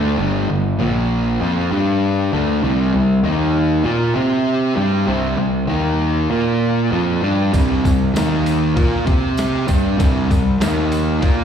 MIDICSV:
0, 0, Header, 1, 4, 480
1, 0, Start_track
1, 0, Tempo, 612870
1, 154, Time_signature, 4, 2, 24, 8
1, 8960, End_track
2, 0, Start_track
2, 0, Title_t, "Distorted electric guitar"
2, 0, Program_c, 0, 30
2, 0, Note_on_c, 0, 50, 89
2, 0, Note_on_c, 0, 57, 95
2, 0, Note_on_c, 0, 62, 97
2, 137, Note_off_c, 0, 50, 0
2, 140, Note_on_c, 0, 43, 95
2, 146, Note_off_c, 0, 57, 0
2, 146, Note_on_c, 0, 50, 101
2, 149, Note_off_c, 0, 62, 0
2, 153, Note_on_c, 0, 55, 104
2, 377, Note_off_c, 0, 43, 0
2, 382, Note_off_c, 0, 50, 0
2, 385, Note_off_c, 0, 55, 0
2, 386, Note_on_c, 0, 43, 66
2, 390, Note_on_c, 0, 50, 75
2, 581, Note_off_c, 0, 43, 0
2, 583, Note_off_c, 0, 50, 0
2, 616, Note_on_c, 0, 46, 91
2, 625, Note_on_c, 0, 53, 104
2, 633, Note_on_c, 0, 58, 112
2, 1092, Note_off_c, 0, 53, 0
2, 1096, Note_off_c, 0, 46, 0
2, 1101, Note_on_c, 0, 53, 94
2, 1104, Note_off_c, 0, 58, 0
2, 1110, Note_on_c, 0, 60, 89
2, 1121, Note_on_c, 0, 65, 102
2, 1335, Note_off_c, 0, 60, 0
2, 1338, Note_off_c, 0, 53, 0
2, 1338, Note_on_c, 0, 55, 98
2, 1344, Note_off_c, 0, 65, 0
2, 1347, Note_on_c, 0, 62, 105
2, 1354, Note_on_c, 0, 67, 92
2, 1815, Note_on_c, 0, 50, 100
2, 1816, Note_off_c, 0, 55, 0
2, 1820, Note_off_c, 0, 62, 0
2, 1824, Note_off_c, 0, 67, 0
2, 1825, Note_on_c, 0, 57, 108
2, 1830, Note_on_c, 0, 62, 100
2, 2054, Note_off_c, 0, 50, 0
2, 2059, Note_off_c, 0, 57, 0
2, 2061, Note_on_c, 0, 48, 97
2, 2062, Note_off_c, 0, 62, 0
2, 2064, Note_on_c, 0, 55, 104
2, 2071, Note_on_c, 0, 60, 98
2, 2291, Note_off_c, 0, 48, 0
2, 2298, Note_off_c, 0, 55, 0
2, 2301, Note_on_c, 0, 48, 57
2, 2302, Note_off_c, 0, 60, 0
2, 2308, Note_on_c, 0, 55, 77
2, 2496, Note_off_c, 0, 48, 0
2, 2500, Note_off_c, 0, 55, 0
2, 2535, Note_on_c, 0, 51, 90
2, 2540, Note_on_c, 0, 58, 98
2, 2545, Note_on_c, 0, 63, 92
2, 2997, Note_off_c, 0, 58, 0
2, 3006, Note_on_c, 0, 58, 84
2, 3010, Note_off_c, 0, 63, 0
2, 3013, Note_on_c, 0, 65, 95
2, 3014, Note_off_c, 0, 51, 0
2, 3017, Note_on_c, 0, 70, 110
2, 3244, Note_off_c, 0, 58, 0
2, 3247, Note_on_c, 0, 60, 89
2, 3253, Note_off_c, 0, 65, 0
2, 3255, Note_off_c, 0, 70, 0
2, 3258, Note_on_c, 0, 67, 105
2, 3261, Note_on_c, 0, 72, 111
2, 3724, Note_off_c, 0, 60, 0
2, 3727, Note_on_c, 0, 55, 81
2, 3731, Note_off_c, 0, 67, 0
2, 3734, Note_on_c, 0, 62, 102
2, 3737, Note_off_c, 0, 72, 0
2, 3743, Note_on_c, 0, 67, 107
2, 3963, Note_off_c, 0, 55, 0
2, 3964, Note_on_c, 0, 48, 85
2, 3973, Note_off_c, 0, 62, 0
2, 3973, Note_on_c, 0, 55, 93
2, 3978, Note_off_c, 0, 67, 0
2, 3980, Note_on_c, 0, 60, 96
2, 4199, Note_off_c, 0, 48, 0
2, 4204, Note_off_c, 0, 55, 0
2, 4208, Note_on_c, 0, 48, 69
2, 4213, Note_on_c, 0, 55, 75
2, 4216, Note_off_c, 0, 60, 0
2, 4410, Note_off_c, 0, 48, 0
2, 4412, Note_off_c, 0, 55, 0
2, 4445, Note_on_c, 0, 51, 86
2, 4452, Note_on_c, 0, 58, 89
2, 4462, Note_on_c, 0, 63, 109
2, 4925, Note_off_c, 0, 58, 0
2, 4929, Note_off_c, 0, 51, 0
2, 4934, Note_on_c, 0, 58, 85
2, 4938, Note_off_c, 0, 63, 0
2, 4943, Note_on_c, 0, 65, 88
2, 4946, Note_on_c, 0, 70, 85
2, 5409, Note_on_c, 0, 53, 79
2, 5414, Note_off_c, 0, 58, 0
2, 5414, Note_off_c, 0, 65, 0
2, 5417, Note_on_c, 0, 60, 97
2, 5420, Note_off_c, 0, 70, 0
2, 5424, Note_on_c, 0, 65, 90
2, 5652, Note_off_c, 0, 53, 0
2, 5652, Note_off_c, 0, 60, 0
2, 5655, Note_on_c, 0, 55, 95
2, 5659, Note_off_c, 0, 65, 0
2, 5668, Note_on_c, 0, 62, 98
2, 5670, Note_on_c, 0, 67, 102
2, 5889, Note_off_c, 0, 55, 0
2, 5889, Note_on_c, 0, 48, 86
2, 5898, Note_on_c, 0, 55, 102
2, 5901, Note_off_c, 0, 62, 0
2, 5903, Note_off_c, 0, 67, 0
2, 5904, Note_on_c, 0, 60, 102
2, 6129, Note_off_c, 0, 48, 0
2, 6134, Note_off_c, 0, 55, 0
2, 6138, Note_on_c, 0, 48, 67
2, 6140, Note_off_c, 0, 60, 0
2, 6143, Note_on_c, 0, 55, 75
2, 6336, Note_off_c, 0, 48, 0
2, 6339, Note_off_c, 0, 55, 0
2, 6373, Note_on_c, 0, 51, 96
2, 6381, Note_on_c, 0, 58, 91
2, 6389, Note_on_c, 0, 63, 93
2, 6844, Note_off_c, 0, 58, 0
2, 6854, Note_on_c, 0, 58, 86
2, 6855, Note_off_c, 0, 51, 0
2, 6861, Note_off_c, 0, 63, 0
2, 6864, Note_on_c, 0, 65, 84
2, 6869, Note_on_c, 0, 70, 94
2, 7089, Note_off_c, 0, 58, 0
2, 7092, Note_on_c, 0, 60, 90
2, 7098, Note_off_c, 0, 65, 0
2, 7101, Note_on_c, 0, 67, 98
2, 7104, Note_off_c, 0, 70, 0
2, 7108, Note_on_c, 0, 72, 110
2, 7573, Note_off_c, 0, 60, 0
2, 7576, Note_on_c, 0, 55, 95
2, 7578, Note_off_c, 0, 67, 0
2, 7584, Note_off_c, 0, 72, 0
2, 7584, Note_on_c, 0, 62, 104
2, 7587, Note_on_c, 0, 67, 96
2, 7810, Note_off_c, 0, 55, 0
2, 7814, Note_on_c, 0, 48, 88
2, 7820, Note_on_c, 0, 55, 83
2, 7822, Note_off_c, 0, 62, 0
2, 7823, Note_off_c, 0, 67, 0
2, 7828, Note_on_c, 0, 60, 100
2, 8053, Note_off_c, 0, 48, 0
2, 8060, Note_off_c, 0, 55, 0
2, 8062, Note_on_c, 0, 48, 67
2, 8064, Note_off_c, 0, 60, 0
2, 8068, Note_on_c, 0, 55, 73
2, 8261, Note_off_c, 0, 48, 0
2, 8263, Note_off_c, 0, 55, 0
2, 8304, Note_on_c, 0, 51, 91
2, 8309, Note_on_c, 0, 58, 98
2, 8319, Note_on_c, 0, 63, 109
2, 8767, Note_off_c, 0, 58, 0
2, 8776, Note_on_c, 0, 58, 89
2, 8779, Note_off_c, 0, 63, 0
2, 8782, Note_on_c, 0, 65, 86
2, 8784, Note_off_c, 0, 51, 0
2, 8792, Note_on_c, 0, 70, 89
2, 8960, Note_off_c, 0, 58, 0
2, 8960, Note_off_c, 0, 65, 0
2, 8960, Note_off_c, 0, 70, 0
2, 8960, End_track
3, 0, Start_track
3, 0, Title_t, "Picked electric bass"
3, 0, Program_c, 1, 34
3, 0, Note_on_c, 1, 38, 96
3, 131, Note_off_c, 1, 38, 0
3, 145, Note_on_c, 1, 31, 89
3, 372, Note_off_c, 1, 31, 0
3, 388, Note_on_c, 1, 31, 72
3, 613, Note_off_c, 1, 31, 0
3, 621, Note_on_c, 1, 34, 86
3, 1074, Note_off_c, 1, 34, 0
3, 1111, Note_on_c, 1, 41, 93
3, 1333, Note_off_c, 1, 41, 0
3, 1341, Note_on_c, 1, 43, 89
3, 1793, Note_off_c, 1, 43, 0
3, 1827, Note_on_c, 1, 38, 93
3, 2051, Note_off_c, 1, 38, 0
3, 2058, Note_on_c, 1, 36, 94
3, 2286, Note_off_c, 1, 36, 0
3, 2304, Note_on_c, 1, 36, 77
3, 2526, Note_off_c, 1, 36, 0
3, 2531, Note_on_c, 1, 39, 86
3, 2988, Note_off_c, 1, 39, 0
3, 3018, Note_on_c, 1, 46, 94
3, 3246, Note_off_c, 1, 46, 0
3, 3257, Note_on_c, 1, 48, 90
3, 3711, Note_off_c, 1, 48, 0
3, 3736, Note_on_c, 1, 43, 93
3, 3965, Note_off_c, 1, 43, 0
3, 3980, Note_on_c, 1, 36, 90
3, 4203, Note_off_c, 1, 36, 0
3, 4208, Note_on_c, 1, 36, 74
3, 4440, Note_off_c, 1, 36, 0
3, 4452, Note_on_c, 1, 39, 79
3, 4909, Note_off_c, 1, 39, 0
3, 4933, Note_on_c, 1, 46, 91
3, 5390, Note_off_c, 1, 46, 0
3, 5421, Note_on_c, 1, 41, 87
3, 5648, Note_off_c, 1, 41, 0
3, 5662, Note_on_c, 1, 43, 86
3, 5889, Note_off_c, 1, 43, 0
3, 5902, Note_on_c, 1, 36, 89
3, 6129, Note_off_c, 1, 36, 0
3, 6147, Note_on_c, 1, 36, 80
3, 6372, Note_off_c, 1, 36, 0
3, 6377, Note_on_c, 1, 39, 77
3, 6833, Note_off_c, 1, 39, 0
3, 6865, Note_on_c, 1, 46, 99
3, 7091, Note_off_c, 1, 46, 0
3, 7102, Note_on_c, 1, 48, 85
3, 7557, Note_off_c, 1, 48, 0
3, 7587, Note_on_c, 1, 43, 88
3, 7814, Note_off_c, 1, 43, 0
3, 7832, Note_on_c, 1, 36, 92
3, 8056, Note_off_c, 1, 36, 0
3, 8070, Note_on_c, 1, 36, 81
3, 8296, Note_off_c, 1, 36, 0
3, 8302, Note_on_c, 1, 39, 81
3, 8758, Note_off_c, 1, 39, 0
3, 8795, Note_on_c, 1, 46, 86
3, 8960, Note_off_c, 1, 46, 0
3, 8960, End_track
4, 0, Start_track
4, 0, Title_t, "Drums"
4, 5903, Note_on_c, 9, 54, 78
4, 5907, Note_on_c, 9, 36, 105
4, 5908, Note_on_c, 9, 51, 88
4, 5981, Note_off_c, 9, 54, 0
4, 5985, Note_off_c, 9, 36, 0
4, 5986, Note_off_c, 9, 51, 0
4, 6149, Note_on_c, 9, 36, 80
4, 6149, Note_on_c, 9, 51, 66
4, 6150, Note_on_c, 9, 54, 74
4, 6227, Note_off_c, 9, 36, 0
4, 6228, Note_off_c, 9, 51, 0
4, 6228, Note_off_c, 9, 54, 0
4, 6390, Note_on_c, 9, 54, 106
4, 6393, Note_on_c, 9, 51, 97
4, 6398, Note_on_c, 9, 38, 118
4, 6468, Note_off_c, 9, 54, 0
4, 6472, Note_off_c, 9, 51, 0
4, 6476, Note_off_c, 9, 38, 0
4, 6628, Note_on_c, 9, 51, 73
4, 6632, Note_on_c, 9, 54, 72
4, 6707, Note_off_c, 9, 51, 0
4, 6710, Note_off_c, 9, 54, 0
4, 6865, Note_on_c, 9, 54, 29
4, 6867, Note_on_c, 9, 51, 96
4, 6868, Note_on_c, 9, 36, 108
4, 6943, Note_off_c, 9, 54, 0
4, 6945, Note_off_c, 9, 51, 0
4, 6947, Note_off_c, 9, 36, 0
4, 7103, Note_on_c, 9, 54, 30
4, 7104, Note_on_c, 9, 51, 74
4, 7107, Note_on_c, 9, 36, 98
4, 7181, Note_off_c, 9, 54, 0
4, 7182, Note_off_c, 9, 51, 0
4, 7185, Note_off_c, 9, 36, 0
4, 7342, Note_on_c, 9, 54, 92
4, 7349, Note_on_c, 9, 51, 100
4, 7353, Note_on_c, 9, 38, 93
4, 7420, Note_off_c, 9, 54, 0
4, 7427, Note_off_c, 9, 51, 0
4, 7432, Note_off_c, 9, 38, 0
4, 7581, Note_on_c, 9, 54, 86
4, 7588, Note_on_c, 9, 51, 68
4, 7589, Note_on_c, 9, 36, 74
4, 7659, Note_off_c, 9, 54, 0
4, 7667, Note_off_c, 9, 36, 0
4, 7667, Note_off_c, 9, 51, 0
4, 7830, Note_on_c, 9, 51, 99
4, 7831, Note_on_c, 9, 36, 111
4, 7831, Note_on_c, 9, 54, 77
4, 7909, Note_off_c, 9, 36, 0
4, 7909, Note_off_c, 9, 51, 0
4, 7909, Note_off_c, 9, 54, 0
4, 8072, Note_on_c, 9, 36, 76
4, 8073, Note_on_c, 9, 51, 65
4, 8077, Note_on_c, 9, 54, 78
4, 8150, Note_off_c, 9, 36, 0
4, 8151, Note_off_c, 9, 51, 0
4, 8156, Note_off_c, 9, 54, 0
4, 8311, Note_on_c, 9, 51, 100
4, 8315, Note_on_c, 9, 54, 100
4, 8316, Note_on_c, 9, 38, 126
4, 8389, Note_off_c, 9, 51, 0
4, 8393, Note_off_c, 9, 54, 0
4, 8394, Note_off_c, 9, 38, 0
4, 8551, Note_on_c, 9, 51, 77
4, 8554, Note_on_c, 9, 54, 71
4, 8629, Note_off_c, 9, 51, 0
4, 8632, Note_off_c, 9, 54, 0
4, 8791, Note_on_c, 9, 51, 86
4, 8794, Note_on_c, 9, 36, 111
4, 8795, Note_on_c, 9, 54, 28
4, 8869, Note_off_c, 9, 51, 0
4, 8872, Note_off_c, 9, 36, 0
4, 8873, Note_off_c, 9, 54, 0
4, 8960, End_track
0, 0, End_of_file